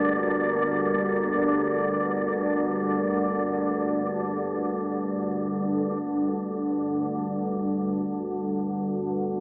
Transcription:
0.00 7.08 G1 medium
0.00 7.07 D2 medium
0.00 9.40 G3 medium
0.00 9.40 D4 medium
0.00 7.09 A#4 medium
0.00 7.12 D5 medium
7.08 9.40 G1 medium
7.08 9.40 D2 medium

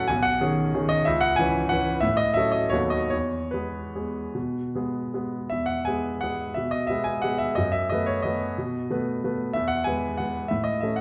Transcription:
0.00 0.12 A2 medium
0.00 0.12 F#3 medium
0.00 0.12 C#4 medium
0.00 0.12 A4 medium
0.00 0.12 F#5 loud
0.00 0.12 A5 loud
0.00 0.12 B5 loud
0.08 0.40 B1 medium
0.08 0.24 G#5 loud
0.23 0.90 F#5 loud
0.40 0.71 D#3 medium
0.40 0.71 C#4 medium
0.40 0.71 G#4 medium
0.74 1.04 D#3 medium
0.74 1.04 C#4 medium
0.74 1.04 G#4 medium
0.89 1.06 D#5 loud
1.05 1.37 C#2 medium
1.05 1.21 E5 loud
1.21 1.37 F#5 loud
1.36 1.68 E3 medium
1.36 1.68 C#4 medium
1.36 1.68 B4 medium
1.36 1.70 G#5 loud
1.69 2.00 E3 medium
1.69 2.01 C#4 medium
1.69 2.01 B4 medium
1.69 2.02 F#5 loud
2.01 2.35 A2 medium
2.01 2.18 E5 loud
2.17 2.35 D#5 loud
2.34 2.70 F#3 medium
2.34 2.70 C#4 medium
2.34 2.70 A4 medium
2.34 2.53 E5 loud
2.52 2.72 D#5 loud
2.69 3.11 D#2 medium
2.69 3.08 F#3 medium
2.69 3.09 B3 medium
2.69 3.09 A4 medium
2.69 2.91 C#5 loud
2.90 3.11 D#5 medium
3.10 3.52 E2 medium
3.10 3.52 C#5 medium
3.51 3.91 G#3 soft
3.51 3.91 B3 soft
3.51 3.92 G#4 medium
3.51 5.32 B4 medium
3.95 4.31 G#3 soft
3.95 4.31 B3 soft
3.95 4.31 G#4 soft
4.35 4.74 B2 medium
4.75 5.10 G#3 soft
4.75 5.10 B3 soft
4.75 5.11 G#4 soft
5.14 5.47 G#3 soft
5.14 5.48 B3 soft
5.14 5.48 G#4 soft
5.50 5.86 E2 medium
5.50 5.67 E5 medium
5.66 5.85 F#5 medium
5.85 6.20 G#3 soft
5.85 6.20 B3 soft
5.85 6.20 G#4 soft
5.85 6.22 G#5 medium
6.21 6.53 G#3 soft
6.21 6.54 B3 soft
6.21 6.54 G#4 medium
6.21 6.55 F#5 medium
6.54 6.89 B2 medium
6.54 6.72 E5 medium
6.71 6.89 D#5 medium
6.87 7.20 G#3 soft
6.87 7.21 B3 soft
6.87 7.21 G#4 medium
6.87 7.05 E5 medium
7.04 7.22 G#5 medium
7.22 7.54 G#3 soft
7.22 7.54 B3 soft
7.22 7.55 G#4 medium
7.22 7.40 F#5 medium
7.38 7.56 E5 medium
7.55 7.90 F#2 medium
7.55 7.73 D#5 medium
7.72 7.90 E5 loud
7.90 8.22 A3 medium
7.90 8.22 B3 medium
7.90 8.22 B4 medium
7.90 8.07 D#5 medium
8.06 8.24 C#5 medium
8.22 8.54 A3 soft
8.22 8.54 B3 medium
8.22 8.55 B4 medium
8.22 9.38 D#5 medium
8.58 8.89 B2 medium
8.90 9.20 A3 medium
8.90 9.21 B3 medium
8.90 9.21 B4 medium
9.24 9.52 A3 medium
9.24 9.52 B3 soft
9.24 9.53 B4 medium
9.53 9.86 E2 medium
9.53 9.69 E5 loud
9.68 9.85 F#5 loud
9.84 10.16 G#3 soft
9.84 10.16 B3 medium
9.84 10.17 B4 medium
9.84 10.18 G#5 loud
10.17 10.48 G#3 soft
10.17 10.48 B3 soft
10.17 10.48 B4 soft
10.17 10.50 F#5 medium
10.48 10.81 A2 medium
10.48 10.65 E5 medium
10.64 10.81 D#5 medium
10.81 11.01 A3 soft
10.81 11.01 C#4 soft
10.81 11.01 A4 soft
10.81 10.98 E5 medium
10.96 11.01 F#5 medium

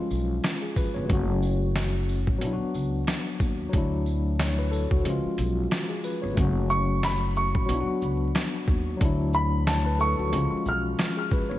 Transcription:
0.00 1.05 F3 medium
0.00 1.07 G#3 medium
0.00 1.08 C#4 medium
0.00 1.09 F4 medium
0.10 0.38 B1 medium
0.10 tambourine soft
0.44 snare loud
0.44 closed hi-hat medium
0.62 0.76 G#4 medium
0.76 0.95 B4 medium
0.76 kick medium
0.76 tambourine medium
0.94 1.07 G1 medium
0.94 1.26 C#5 medium
1.05 2.37 F#3 medium
1.05 2.38 A3 medium
1.09 2.24 F#1 loud
1.09 2.39 C#4 medium
1.09 2.41 F#4 medium
1.09 kick loud
1.09 closed hi-hat medium
1.42 tambourine soft
1.76 snare loud
1.76 closed hi-hat medium
2.09 tambourine medium
2.27 2.39 A1 medium
2.27 kick medium
2.38 2.57 B1 loud
2.38 3.68 F#3 medium
2.38 3.71 B3 medium
2.38 closed hi-hat medium
2.44 3.72 D4 medium
2.44 2.52 E4 medium
2.53 3.77 F#4 medium
2.61 muted upright bass stroke soft
2.74 3.02 C#2 medium
2.74 tambourine soft
3.07 snare loud
3.07 closed hi-hat medium
3.40 3.67 D#2 medium
3.40 kick medium
3.40 tambourine medium
3.69 5.01 F#3 medium
3.69 5.02 A3 medium
3.69 closed hi-hat medium
3.74 4.88 D2 loud
3.74 5.03 D4 medium
3.74 5.05 E4 medium
3.74 kick loud
4.06 tambourine soft
4.39 4.58 C#5 medium
4.39 snare loud
4.39 closed hi-hat medium
4.59 4.72 B4 medium
4.71 4.90 A4 medium
4.71 tambourine medium
4.91 5.03 D2 medium
4.91 5.23 F#4 medium
4.91 kick medium
5.02 5.21 C#2 loud
5.02 6.33 F3 medium
5.02 6.34 G#3 medium
5.02 closed hi-hat medium
5.07 6.36 C#4 medium
5.07 6.37 F4 medium
5.25 muted upright bass stroke soft
5.38 5.65 B1 medium
5.38 closed hi-hat medium
5.38 tambourine soft
5.71 snare loud
5.71 closed hi-hat medium
5.89 6.03 G#4 medium
6.04 6.23 B4 medium
6.04 tambourine medium
6.22 6.35 G1 medium
6.22 6.54 C#5 medium
6.33 7.64 F#3 medium
6.33 7.66 A3 medium
6.37 7.51 F#1 loud
6.37 7.67 C#4 medium
6.37 7.68 F#4 medium
6.37 kick loud
6.37 closed hi-hat medium
6.70 7.00 C#6 medium
6.70 shaker medium
7.03 7.34 B5 medium
7.03 snare loud
7.03 closed hi-hat medium
7.36 7.85 C#6 medium
7.36 shaker medium
7.55 7.66 A1 loud
7.55 kick medium
7.66 7.85 B1 loud
7.66 8.96 F#3 medium
7.66 8.98 B3 medium
7.66 closed hi-hat loud
7.71 8.99 D4 medium
7.71 7.79 E4 medium
7.80 9.04 F#4 medium
7.88 muted upright bass stroke soft
8.02 8.29 C#2 medium
8.02 shaker medium
8.35 snare loud
8.35 closed hi-hat medium
8.68 8.95 D#2 medium
8.68 kick medium
8.68 shaker medium
8.97 10.28 F#3 medium
8.97 10.30 A3 medium
8.97 closed hi-hat medium
9.01 10.15 D2 loud
9.01 10.31 D4 medium
9.01 10.32 E4 medium
9.01 kick loud
9.33 9.64 B5 medium
9.33 shaker medium
9.67 9.86 C#5 medium
9.67 9.97 A5 medium
9.67 snare loud
9.67 closed hi-hat medium
9.86 9.99 B4 medium
9.99 10.18 A4 medium
9.99 10.62 C#6 medium
9.99 shaker medium
10.19 10.31 D2 medium
10.19 10.51 F#4 medium
10.30 10.49 C#2 loud
10.30 11.59 F3 medium
10.30 11.59 G#3 medium
10.30 closed hi-hat medium
10.35 11.59 C#4 medium
10.35 11.59 F4 medium
10.52 muted upright bass stroke medium
10.66 10.93 B1 loud
10.66 11.16 F6 medium
10.66 shaker medium
10.99 snare loud
10.99 closed hi-hat medium
11.17 11.31 G#4 medium
11.31 11.50 B4 medium
11.31 kick medium
11.31 shaker medium
11.49 11.59 G1 medium
11.49 11.59 C#5 medium

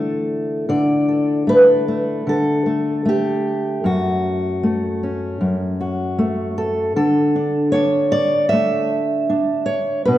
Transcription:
0.00 0.65 D3 medium
0.00 2.29 E3 medium
0.00 1.46 A3 medium
0.00 0.65 A4 soft
0.00 0.68 D5 medium
0.69 2.26 D3 medium
0.69 2.28 D5 medium
1.08 1.49 A4 soft
1.47 1.88 A3 medium
1.47 2.28 B4 loud
1.88 2.66 A3 soft
2.27 3.80 D3 medium
2.27 3.07 A4 medium
2.66 3.05 A3 soft
3.05 4.62 A3 medium
3.05 3.86 G4 medium
3.84 5.39 F#2 medium
3.84 5.79 F#4 medium
4.63 6.17 A3 medium
5.03 6.57 C#4 soft
5.41 6.95 F#2 medium
5.81 6.96 F#4 soft
6.19 6.91 A3 medium
6.58 6.95 A4 medium
6.96 10.02 D3 medium
6.96 7.71 A4 medium
7.36 7.74 D4 soft
7.72 9.29 D4 medium
7.72 8.89 C#5 medium
8.12 8.49 D5 loud
8.49 10.02 A3 medium
8.49 10.05 E5 loud
9.30 10.18 D4 medium
9.66 10.05 C#5 medium
10.05 10.18 B2 medium
10.05 10.18 B4 medium

